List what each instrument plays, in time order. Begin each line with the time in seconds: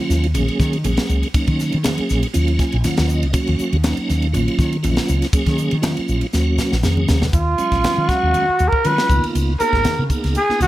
Already playing: tonewheel organ F#3 A#3 C#4 F4
0.10 fretless electric bass D#2, snare, hi-hat pedal
0.24 ride
0.34 fretless electric bass A#1, tonewheel organ F#3 A#3 C#4 G#4, hi-hat pedal, ride, muted conga, high conga
0.48 muted fretless electric bass stroke, ride
0.60 fretless electric bass D#3, kick, snare, hi-hat pedal
0.73 ride
0.84 fretless electric bass A#1, tonewheel organ F#3 A#3 C#4 G#4, hi-hat pedal, ride, high conga
0.97 snare, ride
1.09 fretless electric bass C#2, hi-hat pedal, muted conga
1.23 ride
1.34 tonewheel organ F#3 A#3 C#4 D#4, muted fretless electric bass stroke, kick, hi-hat pedal, ride, muted conga
1.47 fretless electric bass D#3, kick, ride
1.59 snare, hi-hat pedal, muted conga
1.72 fretless electric bass D#3, ride
1.83 tonewheel organ F#3 A#3 C#4 G#4, snare, hi-hat pedal, ride, high conga
1.98 muted fretless electric bass stroke, ride
2.09 fretless electric bass A#1, snare, hi-hat pedal
2.23 ride
2.33 fretless electric bass D#2, tonewheel organ F#3 A#3 C#4 F4, hi-hat pedal, ride, muted conga
2.48 ride
2.59 tonewheel organ G#5, kick, snare, hi-hat pedal
2.72 fretless electric bass A#1, ride
2.84 tonewheel organ F#3 A#3 C#4 F4 F#5, muted fretless electric bass stroke, snare, hi-hat pedal, ride, high conga
2.97 fretless electric bass D#2, snare, ride
3.08 tonewheel organ D#5, hi-hat pedal, muted conga
3.23 fretless electric bass C#2, ride
3.33 tonewheel organ F#3 A#3 C#4 F#4, muted fretless electric bass stroke, kick, hi-hat pedal, ride, muted conga
3.47 fretless electric bass D#2, ride
3.59 muted fretless electric bass stroke, hi-hat pedal, muted conga
3.73 fretless electric bass D#2, ride
3.84 tonewheel organ F#3 A#3 C#4 D#4, snare, hi-hat pedal, ride, high conga
3.97 muted fretless electric bass stroke, ride
4.09 fretless electric bass D#2, snare, hi-hat pedal
4.22 ride
4.33 fretless electric bass A#1, tonewheel organ F#3 A#3 C#4 F4, hi-hat pedal, ride, muted conga, high conga
4.48 muted fretless electric bass stroke, ride
4.59 fretless electric bass D#3, kick, snare, hi-hat pedal
4.73 ride
4.83 fretless electric bass A#1, tonewheel organ F#3 A#3 C#4 F4, hi-hat pedal, ride, high conga
4.97 snare, ride
5.08 fretless electric bass C#2, hi-hat pedal, muted conga
5.22 snare, ride
5.33 tonewheel organ F#3 A#3 C#4 G#4, muted fretless electric bass stroke, kick, hi-hat pedal, ride, muted conga
5.46 fretless electric bass D#3, kick, snare, ride
5.58 hi-hat pedal, muted conga
5.71 fretless electric bass D#3, ride
5.82 tonewheel organ F#3 A#3 C#4 F4, snare, hi-hat pedal, ride, high conga
5.97 muted fretless electric bass stroke, ride
6.08 fretless electric bass A#1, hi-hat pedal
6.21 ride
6.33 fretless electric bass D#2, tonewheel organ F#3 A#3 C#4 F#4, snare, hi-hat pedal, muted conga
6.58 snare, hi-hat pedal, low conga
6.72 fretless electric bass A#1, snare
6.83 fretless electric bass F2, tonewheel organ F#3 A#3 C#4 G#4, snare, hi-hat pedal, high conga
6.97 high conga
7.08 fretless electric bass D#2, snare, hi-hat pedal, low conga
7.22 snare, low conga
7.33 fretless electric bass D#2, trumpet F4, kick, hi-hat pedal, ride, muted conga
7.58 tonewheel organ F#3 G#3 C#4 F5, hi-hat pedal, ride
7.72 fretless electric bass A#1, kick, snare, ride
7.84 muted fretless electric bass stroke, snare, hi-hat pedal, ride, high conga
7.98 fretless electric bass D#3
8.08 trumpet F#4, muted fretless electric bass stroke, kick, snare, hi-hat pedal, ride
8.23 fretless electric bass D#2
8.34 hi-hat pedal, ride, muted conga, high conga
8.48 muted fretless electric bass stroke
8.59 fretless electric bass D#2, hi-hat pedal, ride, muted conga
8.68 trumpet A#4
8.73 kick
8.84 fretless electric bass D#3, tonewheel organ F#3 G#3 C#4 F4, trumpet B4, hi-hat pedal, ride
8.98 snare
9.10 fretless electric bass C#2, tonewheel organ A#3 B3 D#4 F4, kick, hi-hat pedal, ride, muted conga, high conga
9.24 ride
9.35 fretless electric bass C#2, hi-hat pedal, ride, muted conga
9.60 tonewheel organ A#3 B3 D#4 G#4, trumpet A#4, muted fretless electric bass stroke, hi-hat pedal, ride
9.73 fretless electric bass G#1, kick, snare
9.84 muted fretless electric bass stroke, snare, hi-hat pedal, ride, high conga
9.99 fretless electric bass C#3
10.10 tonewheel organ A#3 B3 D#4 G#4, muted fretless electric bass stroke, kick, hi-hat pedal, ride
10.24 fretless electric bass C#2, snare, ride
10.35 trumpet G#4, hi-hat pedal, ride, muted conga
10.49 tonewheel organ A#3 B3 D#4 F4, muted fretless electric bass stroke, snare
10.60 fretless electric bass C#2, trumpet F#4, hi-hat pedal, ride, muted conga, high conga